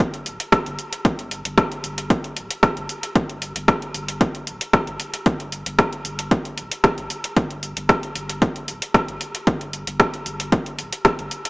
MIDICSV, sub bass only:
0, 0, Header, 1, 2, 480
1, 0, Start_track
1, 0, Tempo, 526316
1, 958, Time_signature, 4, 2, 24, 8
1, 10485, End_track
2, 0, Start_track
2, 0, Title_t, "Sub bass"
2, 0, Program_c, 0, 38
2, 0, Note_on_c, 0, 31, 94
2, 92, Note_off_c, 0, 31, 0
2, 238, Note_on_c, 0, 26, 78
2, 345, Note_off_c, 0, 26, 0
2, 605, Note_on_c, 0, 31, 94
2, 700, Note_off_c, 0, 31, 0
2, 957, Note_on_c, 0, 31, 102
2, 1291, Note_off_c, 0, 31, 0
2, 1325, Note_on_c, 0, 31, 108
2, 1419, Note_off_c, 0, 31, 0
2, 1677, Note_on_c, 0, 31, 90
2, 2011, Note_off_c, 0, 31, 0
2, 2157, Note_on_c, 0, 26, 81
2, 2264, Note_off_c, 0, 26, 0
2, 2525, Note_on_c, 0, 31, 92
2, 2619, Note_off_c, 0, 31, 0
2, 2877, Note_on_c, 0, 31, 101
2, 3212, Note_off_c, 0, 31, 0
2, 3245, Note_on_c, 0, 31, 107
2, 3339, Note_off_c, 0, 31, 0
2, 3597, Note_on_c, 0, 31, 96
2, 3932, Note_off_c, 0, 31, 0
2, 4078, Note_on_c, 0, 26, 78
2, 4184, Note_off_c, 0, 26, 0
2, 4445, Note_on_c, 0, 31, 95
2, 4539, Note_off_c, 0, 31, 0
2, 4797, Note_on_c, 0, 31, 103
2, 5132, Note_off_c, 0, 31, 0
2, 5165, Note_on_c, 0, 31, 106
2, 5259, Note_off_c, 0, 31, 0
2, 5517, Note_on_c, 0, 31, 92
2, 5852, Note_off_c, 0, 31, 0
2, 5997, Note_on_c, 0, 26, 81
2, 6104, Note_off_c, 0, 26, 0
2, 6364, Note_on_c, 0, 31, 95
2, 6459, Note_off_c, 0, 31, 0
2, 6717, Note_on_c, 0, 31, 102
2, 7051, Note_off_c, 0, 31, 0
2, 7084, Note_on_c, 0, 31, 103
2, 7179, Note_off_c, 0, 31, 0
2, 7437, Note_on_c, 0, 31, 95
2, 7772, Note_off_c, 0, 31, 0
2, 7917, Note_on_c, 0, 26, 79
2, 8024, Note_off_c, 0, 26, 0
2, 8284, Note_on_c, 0, 31, 98
2, 8379, Note_off_c, 0, 31, 0
2, 8637, Note_on_c, 0, 31, 100
2, 8972, Note_off_c, 0, 31, 0
2, 9004, Note_on_c, 0, 31, 102
2, 9099, Note_off_c, 0, 31, 0
2, 9357, Note_on_c, 0, 31, 92
2, 9691, Note_off_c, 0, 31, 0
2, 9837, Note_on_c, 0, 26, 74
2, 9944, Note_off_c, 0, 26, 0
2, 10205, Note_on_c, 0, 31, 94
2, 10299, Note_off_c, 0, 31, 0
2, 10485, End_track
0, 0, End_of_file